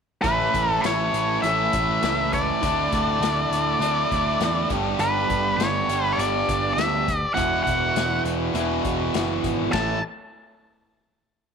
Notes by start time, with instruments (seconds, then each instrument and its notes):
0.22 picked electric bass A1, twelve-string acoustic guitar A2 E3 A3 C#4 E4, lead electric guitar B4, kick, closed hi-hat
0.53 picked electric bass A1, twelve-string acoustic guitar A3 C#4 E4, kick, closed hi-hat
0.70 lead electric guitar A4
0.81 picked electric bass A1, twelve-string acoustic guitar E3 A3 C#4 E4, lead electric guitar C#5, closed hi-hat
0.85 snare
1.13 picked electric bass A1, twelve-string acoustic guitar C#4, closed hi-hat
1.42 picked electric bass A1, twelve-string acoustic guitar A2 E3 A3 C#4 E4, lead electric guitar E5, closed hi-hat
1.46 distorted electric guitar A3
1.73 picked electric bass A1, twelve-string acoustic guitar A3 C#4, kick, closed hi-hat
2.02 picked electric bass C#2, twelve-string acoustic guitar E3 A3 C#4 E4, snare, closed hi-hat
2.32 twelve-string acoustic guitar A3 E4, lead electric guitar D5, kick, closed hi-hat
2.62 picked electric bass D2, twelve-string acoustic guitar D3 A3 D4 E4, kick, closed hi-hat
2.91 picked electric bass D2, twelve-string acoustic guitar A3 D4 E4, kick, closed hi-hat
3.20 picked electric bass D2, twelve-string acoustic guitar D3 A3 D4 E4, closed hi-hat
3.24 snare
3.50 picked electric bass D2, twelve-string acoustic guitar A3 D4 E4, closed hi-hat
3.79 picked electric bass D2, twelve-string acoustic guitar D3 A3 D4 E4, closed hi-hat
4.11 picked electric bass D2, twelve-string acoustic guitar A3 D4 E4, kick, closed hi-hat
4.40 picked electric bass E2, twelve-string acoustic guitar D3 A3 D4 E4, snare, closed hi-hat
4.70 picked electric bass G1, overdriven electric guitar G2 D3, twelve-string acoustic guitar G3 B3 D4 G4, kick, closed hi-hat
4.99 picked electric bass G1, twelve-string acoustic guitar G2 D3 G3 B3 D4 G4, lead electric guitar B4, closed hi-hat
5.29 picked electric bass G1, twelve-string acoustic guitar G3 B3 D4 G4, kick, closed hi-hat
5.57 picked electric bass G1, twelve-string acoustic guitar G3, lead electric guitar C#5, closed hi-hat
5.61 twelve-string acoustic guitar B3 D4 G4, snare
5.88 picked electric bass G1, overdriven electric guitar G2 D3, twelve-string acoustic guitar G3 B3 D4 G4, closed hi-hat
6.05 lead electric guitar B4
6.13 lead electric guitar D5
6.17 picked electric bass G1, twelve-string acoustic guitar G2 D3 G3 B3 D4 G4, closed hi-hat
6.46 picked electric bass G1, twelve-string acoustic guitar G3 B3 D4 G4, kick, closed hi-hat
6.73 picked electric bass D2, twelve-string acoustic guitar G3 B3 D4, lead electric guitar E5
6.78 snare, closed hi-hat
7.06 twelve-string acoustic guitar G3 B3 D4 G4, kick, closed hi-hat
7.17 lead electric guitar D5
7.34 picked electric bass E1, twelve-string acoustic guitar E2 B2 E3 B3 E4 F#4, lead electric guitar F#5, kick, closed hi-hat
7.64 picked electric bass E1, twelve-string acoustic guitar E3 B3 E4 F#4, lead electric guitar F#5, kick, closed hi-hat
7.94 picked electric bass E1, twelve-string acoustic guitar E3 B3 E4, snare, closed hi-hat
8.24 picked electric bass E1, twelve-string acoustic guitar E3 B3 E4 F#4, closed hi-hat
8.53 picked electric bass E1, twelve-string acoustic guitar E2 B2 E3 B3 E4 F#4, closed hi-hat
8.59 distorted electric guitar E3
8.84 picked electric bass E1, twelve-string acoustic guitar E3 B3 E4 F#4, kick, closed hi-hat
9.13 picked electric bass F#1, twelve-string acoustic guitar E3 B3 E4 F#4, snare, closed hi-hat
9.43 picked electric bass G#1, twelve-string acoustic guitar E3 B3 E4 F#4, kick, closed hi-hat
9.72 picked electric bass A1, twelve-string acoustic guitar A2 E3 A3 C#4 A4, overdriven electric guitar E4, lead electric guitar A5, kick, snare, ride bell